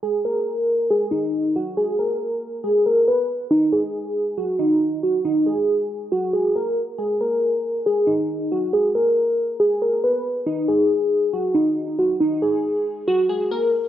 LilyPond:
\new Staff \with { instrumentName = "Synth keys" } { \time 4/4 \key gis \minor \tempo 4 = 138 gis'8 ais'4. gis'8 dis'4 fis'8 | gis'8 ais'4. gis'8 ais'8 b'8 r8 | dis'8 gis'4. fis'8 dis'4 fis'8 | dis'8 gis'4. fis'8 gis'8 ais'8 r8 |
gis'8 ais'4. gis'8 dis'4 fis'8 | gis'8 ais'4. gis'8 ais'8 b'8 r8 | dis'8 gis'4. fis'8 dis'4 fis'8 | dis'8 gis'4. fis'8 gis'8 ais'8 r8 | }